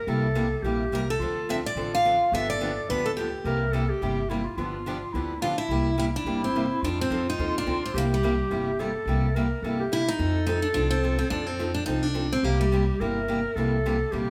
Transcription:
Already playing: clarinet A#4
0.07 upright bass C2, steel-string acoustic guitar C3 G3 A#3 E4 G4, clarinet A4
0.35 steel-string acoustic guitar C3 G3 A#3 E4 G4
0.59 upright bass A#1, clarinet A4
0.63 steel-string acoustic guitar C3 G3 A#3 E4 G4, clarinet G4
0.92 upright bass C2, steel-string acoustic guitar C3 G3 A#3 E4 G4 A#4
1.10 steel-string acoustic guitar A4
1.19 upright bass D2, steel-string acoustic guitar D3 F3 C4 D4 A4, clarinet F4
1.49 steel-string acoustic guitar D3 F3 C4 D4 A4 E5
1.66 steel-string acoustic guitar D5
1.75 upright bass A1, steel-string acoustic guitar D3 F3 C4 D4 A4, clarinet F4
1.95 steel-string acoustic guitar F5
2.05 steel-string acoustic guitar D3 F3 C4 D4 A4
2.32 upright bass G1, steel-string acoustic guitar D3 F3 B3 D4 G4 E5, clarinet A4
2.50 steel-string acoustic guitar D5
2.61 steel-string acoustic guitar D3 F3 B3 D4 G4
2.89 upright bass D2, steel-string acoustic guitar D3 F3 B3 D4 G4 B4
3.06 steel-string acoustic guitar A4
3.17 steel-string acoustic guitar D3 F3 B3 D4 G4
3.44 upright bass C2, steel-string acoustic guitar C3 G3 A#3 E4 G4, clarinet A#4
3.72 steel-string acoustic guitar C3 G3 A#3 E4 G4, clarinet A4
3.90 clarinet G4
4.01 upright bass G1, steel-string acoustic guitar C3 G3 A#3 E4 G4
4.30 steel-string acoustic guitar C3 G3 A#3 E4 G4, clarinet E4
4.45 clarinet F4
4.57 upright bass G1, steel-string acoustic guitar D3 F3 B3 D4 G4, clarinet F4
4.86 steel-string acoustic guitar D3 F3 B3 D4 G4
5.13 upright bass D2, steel-string acoustic guitar D3 F3 B3 D4 G4, clarinet E4
5.42 steel-string acoustic guitar D3 F3 B3 D4 F4 G4, clarinet D4
5.58 steel-string acoustic guitar E4
5.69 upright bass C2, steel-string acoustic guitar C3 G3 A#3 E4 G4, clarinet E4
5.98 steel-string acoustic guitar C3 G3 A#3 E4 G4
6.16 steel-string acoustic guitar D4
6.25 upright bass G1, steel-string acoustic guitar C3 G3 A#3 E4 G4
6.44 steel-string acoustic guitar C4
6.56 steel-string acoustic guitar C3 G3 A#3 E4 G4
6.82 upright bass F2, steel-string acoustic guitar F3 C4 D4 D#4 A4, clarinet F4
7.01 steel-string acoustic guitar C4
7.10 upright bass F2, steel-string acoustic guitar F3 C4 D#4 A4
7.30 steel-string acoustic guitar D#4
7.39 upright bass D#2, steel-string acoustic guitar F3 C4 D#4 A4
7.58 steel-string acoustic guitar D4
7.66 upright bass D2, steel-string acoustic guitar F3 C4 D#4 A4
7.86 steel-string acoustic guitar C4
7.94 upright bass C2, steel-string acoustic guitar C3 G3 A#3 E4 G4, clarinet G4
8.14 steel-string acoustic guitar G3
8.23 steel-string acoustic guitar C3 G3 A#3 E4 G4
8.50 upright bass G1, steel-string acoustic guitar C3 G3 A#3 E4 G4
8.79 steel-string acoustic guitar C3 G3 A#3 E4 G4, clarinet A4
9.06 upright bass C2, steel-string acoustic guitar C3 G3 A#3 E4 G4
9.35 steel-string acoustic guitar C3 G3 A#3 E4 G4, clarinet A#4
9.62 upright bass G1, steel-string acoustic guitar C3 G3 A#3 E4 G4, clarinet A4
9.80 clarinet G4
9.92 steel-string acoustic guitar C3 G3 A#3 E4 G4
10.08 steel-string acoustic guitar D#4
10.19 upright bass F2, steel-string acoustic guitar F3 C4 D#4 A4, clarinet A4
10.47 steel-string acoustic guitar F3 C4 D#4 A4
10.62 steel-string acoustic guitar D4
10.74 upright bass C2, steel-string acoustic guitar F3 C4 D4 D#4 A4
10.91 steel-string acoustic guitar C4
11.03 steel-string acoustic guitar F3 C4 D#4 A4
11.19 steel-string acoustic guitar C4
11.30 upright bass F2, steel-string acoustic guitar F3 C4 D4 D#4 A4
11.46 steel-string acoustic guitar C4
11.59 steel-string acoustic guitar F3 C4 D#4 A4
11.74 steel-string acoustic guitar D4
11.86 upright bass C2, steel-string acoustic guitar F3 C4 D#4 A4
12.03 steel-string acoustic guitar D4
12.14 steel-string acoustic guitar F3 C4 D#4 A4
12.33 steel-string acoustic guitar C4
12.43 upright bass C2, steel-string acoustic guitar C3 G3 A#3 E4 G4, clarinet G4
12.61 steel-string acoustic guitar G3
12.72 steel-string acoustic guitar C3 G3 A#3 E4 G4
13.00 upright bass G1, steel-string acoustic guitar C3 G3 A#3 E4 G4, clarinet A#4
13.28 steel-string acoustic guitar C3 G3 A#3 E4 G4
13.55 upright bass C2, steel-string acoustic guitar C3 G3 A#3 E4 G4, clarinet A4
13.86 steel-string acoustic guitar C3 G3 A#3 E4 G4
14.12 upright bass A#1, steel-string acoustic guitar C3 G3 A#3 E4 G4, clarinet G4

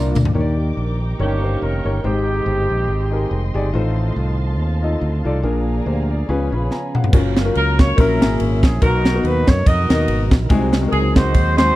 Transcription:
Already playing: fingered electric bass C2, grand piano A#2 A#3 D4 F4 A#4 D5, tonewheel organ A#3 D4 F4 D5, horn section F4 A#4
0.15 fingered electric bass D2, mid tom, tambourine
0.25 floor tom
0.33 fingered electric bass D#2, tonewheel organ D#3 A#3 D4 G4, grand piano D#3 D#4 G4 A#4 C#5, string section D#4 G5 A#5 D6
0.41 grand piano D5
0.58 tonewheel organ A#3 G4
0.77 fingered electric bass A#1, tonewheel organ D4 A#4
1.02 tonewheel organ A#3 G4
1.19 fingered electric bass G1, grand piano G2 D#4 G4 A#4 C#5, tonewheel organ D#3 A#3 C#4 G4, horn section A#3 C#4 G4, string section C#6
1.42 grand piano D#4 G4 A#4 C5
1.62 fingered electric bass F1, horn section C#4 D#4 A#4
1.84 fingered electric bass G1, grand piano D#4 G4 A#4 C#5
2.03 fingered electric bass G#1, grand piano G#2 G#3 D#4 G4 C5, tonewheel organ D#3 G#3 C4 G4, horn section C4 D#4 G4, string section D#5 C6
2.46 fingered electric bass G1
2.70 fingered electric bass A#1
2.88 fingered electric bass G#1
3.11 grand piano D#4 G4 G#4 A#4
3.31 fingered electric bass F1
3.54 fingered electric bass G1, grand piano D#4 G4 G#4 D5
3.73 fingered electric bass A1, grand piano A2 D#4 F4 A4 C5, tonewheel organ D#3 G3 C4 F4, string section F5 A5
3.80 tonewheel organ A3
4.16 fingered electric bass C2
4.59 fingered electric bass D#2
4.82 grand piano D#4 F4 A4 D#5
5.01 fingered electric bass D2
5.24 fingered electric bass C2, grand piano D#4 F4 A4 D5
5.42 fingered electric bass A#1, grand piano A#2 D4 F4 G#4 A#4, tonewheel organ F3 A#3 D4 G#4, string section D5 F5 G#5 A#5
5.86 fingered electric bass D2, grand piano G4 C5
6.11 grand piano G#4 D5
6.29 fingered electric bass C#2, grand piano C#3 C#4 F4 G#4 B4, tonewheel organ F3 B3 C#4 G#4, string section C#5 G#5 B5
6.52 fingered electric bass A#1, grand piano C#4 F4 G#4 B4 B5
6.71 grand piano F5 G#5 A#5, snare
6.95 grand piano B4 F5 F#5, mid tom
7.04 floor tom
7.13 fingered electric bass F#1, tonewheel organ F#3 A#3 C#4 A#4 F5, grand piano A#3 C#4 F4 F#4 A#4, kick, crash
7.37 snare, ride
7.44 grand piano A#3 C#4 F4 F#4 A#4
7.55 fingered electric bass C#2, horn section A#4, ride
7.79 horn section C#5, kick, snare, ride
7.96 fingered electric bass A#1, grand piano A#2 A#3 C#4 E4 F#4 A#4, tonewheel organ A#3 C#4 E4, horn section C#4 E4 A#4, kick, ride
8.00 tonewheel organ F#3 A4
8.05 tonewheel organ A#4
8.19 fingered electric bass G#1, grand piano A#3 C#4 E4 F#4 G#4, snare, ride
8.40 fingered electric bass G#1, ride
8.63 fingered electric bass A#1, horn section G#4, kick, snare, ride
8.81 fingered electric bass B1, grand piano B2 A#3 B3 D#4 F#4 A#4, tonewheel organ B2 F#3 D#4 G#4, horn section D#4 F#4 A#4, kick, ride
8.89 tonewheel organ A#4
9.05 snare, ride
9.14 grand piano A#3 B3 D#4 F#4 A#4
9.23 fingered electric bass D#2, horn section B4, ride
9.47 fingered electric bass F#2, horn section C#5, kick, snare, ride
9.66 fingered electric bass F2, horn section F#4 A#4 D#5, kick, ride
9.89 fingered electric bass D#2, grand piano A#3 B3 D#4 F#4 A#4, snare, ride
10.08 fingered electric bass G#1, ride
10.31 fingered electric bass A#1, kick, snare, ride
10.49 fingered electric bass C2, grand piano C3 G#3 C4 D#4 F#4 G#4, tonewheel organ F#3 G#3 C4 D#4 G#4, kick, ride
10.73 snare, ride
10.81 grand piano G#3 C4 D#4 F#4 G#4
10.88 horn section G#4, grand piano A#4
10.92 fingered electric bass C#2, ride
11.16 horn section D#4 F#4 C5, kick, snare, ride
11.34 fingered electric bass D#2, kick, ride
11.57 grand piano G#3 C4 D#4 F#4 G#4, horn section D#4 F#4 C5, snare, ride

